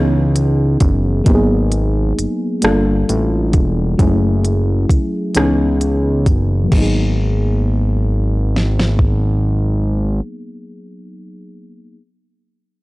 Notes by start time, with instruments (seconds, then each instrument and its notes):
Already playing: analog synth bass C#2, fm electric piano E3 B3 C#4 D#4 G#4
0.36 closed hi-hat
0.80 analog synth bass F#1, kick, closed hi-hat
1.24 analog synth bass G#1, fm electric piano F#3 A#3 B3 D#4 G4, kick, closed hi-hat
1.34 fm electric piano G#4
1.72 closed hi-hat
2.19 analog synth bass G1, closed hi-hat
2.62 analog synth bass G1, fm electric piano G3 A#3 D4 F4, cross-stick, closed hi-hat
2.66 fm electric piano A4
3.09 analog synth bass A1, closed hi-hat
3.53 analog synth bass E1, kick, closed hi-hat
3.98 analog synth bass F#1, fm electric piano F#3 G#3 C#4 E4, kick, closed hi-hat
4.02 fm electric piano A3 G#4
4.45 closed hi-hat
4.89 analog synth bass C#2, kick, closed hi-hat
5.35 analog synth bass C#2, fm electric piano E3 B3 C#4 D#4, cross-stick, closed hi-hat
5.39 fm electric piano G#4
5.81 closed hi-hat
6.26 analog synth bass F#1, kick, closed hi-hat
6.64 fm electric piano F#3
6.69 analog synth bass G#1, fm electric piano A#3, kick, crash
6.73 fm electric piano B3
6.78 fm electric piano D#4
6.82 fm electric piano G#4
8.56 snare
8.79 snare
8.99 kick